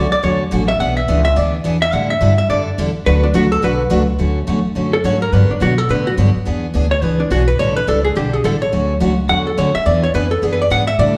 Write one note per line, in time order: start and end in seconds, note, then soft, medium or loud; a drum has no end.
0.00 0.11 C#2 loud
0.12 0.23 D5 loud
0.12 muted upright bass stroke soft
0.23 0.51 E2 medium
0.23 0.42 D3 medium
0.23 0.42 F#3 medium
0.23 0.43 A3 medium
0.23 0.43 C#4 medium
0.23 0.43 F#4 medium
0.23 0.40 C#5 medium
0.51 0.79 A1 loud
0.51 0.62 D3 medium
0.51 0.62 F#3 medium
0.51 0.62 A3 medium
0.51 0.63 C#4 medium
0.51 0.63 F#4 medium
0.68 0.79 E5 loud
0.80 1.07 B1 medium
0.80 0.99 E3 medium
0.80 0.99 B3 medium
0.80 0.99 D4 medium
0.80 1.00 G#4 medium
0.80 0.96 F#5 loud
0.97 1.23 E5 medium
1.08 1.36 C#2 loud
1.08 1.19 E3 medium
1.08 1.19 B3 medium
1.08 1.19 D4 medium
1.08 1.19 G#4 medium
1.25 1.37 E5 loud
1.36 1.64 D2 medium
1.36 1.55 E3 medium
1.36 1.56 B3 medium
1.36 1.56 D4 medium
1.36 1.56 G#4 medium
1.36 1.53 D5 medium
1.64 1.92 E2 medium
1.64 1.75 E3 medium
1.64 1.75 B3 medium
1.64 1.76 D4 medium
1.64 1.76 G#4 loud
1.82 1.93 E5 loud
1.92 2.20 A2 medium
1.92 2.12 D3 medium
1.92 2.12 G3 medium
1.92 2.12 D4 medium
1.92 2.12 E4 medium
1.92 2.13 A4 medium
1.92 2.10 F#5 loud
2.10 2.36 E5 loud
2.21 2.49 G2 medium
2.21 2.32 D3 medium
2.21 2.32 G3 medium
2.21 2.32 D4 medium
2.21 2.32 E4 medium
2.21 2.32 A4 medium
2.38 2.49 E5 loud
2.49 2.77 F#2 medium
2.49 2.69 D3 medium
2.49 2.69 G3 medium
2.49 2.69 D4 medium
2.49 2.69 E4 medium
2.49 2.69 A4 medium
2.49 2.60 D5 medium
2.78 2.94 E2 medium
2.78 2.89 D3 medium
2.78 2.89 G3 medium
2.78 2.89 D4 medium
2.78 2.89 E4 medium
2.78 2.89 A4 medium
2.95 muted upright bass stroke soft
3.06 3.34 D2 medium
3.06 3.25 D3 medium
3.06 3.25 F#3 medium
3.06 3.26 A3 medium
3.06 3.26 D4 medium
3.06 3.26 F#4 medium
3.06 3.23 B4 loud
3.06 3.26 B4 medium
3.23 3.34 D4 medium
3.34 3.62 C#2 medium
3.34 3.45 D3 medium
3.34 3.45 F#3 medium
3.34 3.45 A3 medium
3.34 3.45 D4 medium
3.34 3.45 F#4 medium
3.34 3.51 F#4 medium
3.34 3.45 B4 medium
3.52 3.63 A4 loud
3.62 3.90 B1 medium
3.62 3.82 D3 medium
3.62 3.82 F#3 medium
3.62 3.82 A3 medium
3.62 3.82 D4 medium
3.62 3.82 F#4 medium
3.62 3.82 B4 medium
3.62 4.06 B4 medium
3.90 4.19 C#2 medium
3.90 4.01 D3 medium
3.90 4.01 F#3 medium
3.90 4.01 A3 medium
3.90 4.02 D4 medium
3.90 4.02 F#4 medium
3.90 4.02 B4 medium
4.19 4.47 D2 medium
4.19 4.38 D3 medium
4.19 4.38 F#3 medium
4.19 4.39 A3 medium
4.19 4.39 C#4 medium
4.19 4.39 F#4 medium
4.47 4.64 E2 medium
4.47 4.58 D3 medium
4.47 4.58 F#3 medium
4.47 4.58 A3 medium
4.47 4.58 C#4 medium
4.47 4.59 F#4 medium
4.65 muted upright bass stroke soft
4.75 5.03 F#2 medium
4.75 4.95 D3 medium
4.75 4.95 F#3 medium
4.75 4.95 A3 medium
4.75 4.95 C#4 medium
4.75 4.96 F#4 medium
4.93 5.04 A4 medium
5.04 5.32 G#2 medium
5.04 5.15 D3 medium
5.04 5.15 F#3 medium
5.04 5.15 A3 medium
5.04 5.16 C#4 medium
5.04 5.16 F#4 medium
5.04 5.21 C#5 loud
5.22 5.33 A#4 medium
5.32 5.48 G2 medium
5.32 5.52 D3 medium
5.32 5.52 F#3 medium
5.32 5.52 B3 medium
5.32 5.52 D4 medium
5.32 5.52 G4 medium
5.32 5.50 B4 loud
5.50 5.61 D4 soft
5.50 muted upright bass stroke soft
5.60 5.89 B2 medium
5.60 5.71 D3 medium
5.60 5.72 F#3 medium
5.60 5.72 B3 medium
5.60 5.72 D4 medium
5.60 5.78 F#4 medium
5.60 5.72 G4 medium
5.78 5.89 A4 medium
5.89 6.17 A2 medium
5.89 6.08 D3 medium
5.89 6.09 F#3 medium
5.89 6.09 B3 medium
5.89 6.09 D4 medium
5.89 6.09 G4 medium
5.89 6.07 B4 loud
6.07 6.14 F#4 medium
6.17 6.34 G2 medium
6.17 6.28 D3 medium
6.17 6.29 F#3 medium
6.17 6.29 B3 medium
6.17 6.29 D4 medium
6.17 6.29 G4 medium
6.35 muted upright bass stroke soft
6.45 6.74 E2 medium
6.45 6.65 E3 medium
6.45 6.65 B3 medium
6.45 6.65 D4 medium
6.45 6.66 G#4 medium
6.74 7.02 D2 medium
6.74 6.85 E3 medium
6.74 6.85 B3 medium
6.74 6.85 D4 medium
6.74 6.86 G#4 medium
6.91 7.04 C#5 loud
7.02 7.30 C#2 medium
7.02 7.22 E3 medium
7.02 7.22 B3 medium
7.02 7.22 D4 medium
7.02 7.22 G#4 medium
7.02 7.20 B4 loud
7.20 7.31 D4 medium
7.30 7.58 B1 loud
7.30 7.42 E3 medium
7.30 7.42 B3 medium
7.30 7.42 D4 medium
7.30 7.48 F#4 medium
7.30 7.42 G#4 loud
7.48 7.59 B4 loud
7.59 7.87 A1 medium
7.59 7.78 D3 medium
7.59 7.79 G3 medium
7.59 7.79 D4 medium
7.59 7.79 E4 medium
7.59 7.79 A4 medium
7.59 7.76 C#5 loud
7.76 7.87 B4 loud
7.87 8.15 C#2 medium
7.87 7.98 D3 medium
7.87 7.98 G3 medium
7.87 7.99 D4 medium
7.87 7.99 E4 medium
7.87 8.04 A4 medium
7.87 7.99 A4 medium
8.04 8.15 G#4 medium
8.15 8.44 B1 medium
8.15 8.35 D3 medium
8.15 8.35 G3 medium
8.15 8.35 D4 medium
8.15 8.35 E4 medium
8.15 8.33 G4 medium
8.15 8.35 A4 medium
8.33 8.44 G#4 loud
8.44 8.72 A1 medium
8.44 8.55 D3 medium
8.44 8.55 G3 medium
8.44 8.55 D4 medium
8.44 8.55 E4 medium
8.44 8.55 A4 medium
8.44 8.61 A4 medium
8.62 8.98 C#5 medium
8.72 9.00 D2 medium
8.72 8.92 D3 medium
8.72 8.92 F#3 medium
8.72 8.92 A3 medium
8.72 8.92 C#4 medium
8.72 8.92 F#4 medium
9.00 9.29 C#2 medium
9.00 9.11 D3 medium
9.00 9.12 F#3 medium
9.00 9.12 A3 medium
9.00 9.12 C#4 medium
9.00 9.12 F#4 medium
9.29 9.57 E2 medium
9.29 9.48 D3 medium
9.29 9.48 F#3 medium
9.29 9.48 A3 medium
9.29 9.49 C#4 medium
9.29 9.49 F#4 medium
9.29 9.46 F#5 medium
9.47 9.57 A4 medium
9.57 9.73 D2 medium
9.57 9.68 D3 medium
9.57 9.68 F#3 medium
9.57 9.68 A3 medium
9.57 9.69 C#4 medium
9.57 9.69 F#4 medium
9.57 9.75 C#5 medium
9.75 9.86 E5 loud
9.75 muted upright bass stroke soft
9.85 10.13 E2 medium
9.85 10.05 E3 medium
9.85 10.05 B3 medium
9.85 10.05 D4 medium
9.85 10.06 G#4 medium
9.85 10.02 D5 loud
10.03 10.14 C#5 medium
10.14 10.42 F2 medium
10.14 10.25 E3 medium
10.14 10.25 B3 medium
10.14 10.25 D4 medium
10.14 10.25 G#4 medium
10.14 10.31 B4 medium
10.31 10.43 A4 medium
10.42 10.70 F#2 medium
10.42 10.62 E3 medium
10.42 10.62 B3 medium
10.42 10.62 D4 medium
10.42 10.52 G#4 medium
10.42 10.62 G#4 medium
10.53 10.61 B4 medium
10.62 10.71 D5 medium
10.70 10.98 G#2 medium
10.70 10.81 E3 medium
10.70 10.82 B3 medium
10.70 10.82 D4 medium
10.70 10.82 G#4 medium
10.70 10.87 F#5 loud
10.87 10.99 E5 loud
10.99 11.17 A2 loud
10.99 11.17 D3 medium
10.99 11.17 G3 medium
10.99 11.17 D4 medium
10.99 11.17 E4 medium
10.99 11.17 A4 medium
10.99 11.16 D5 loud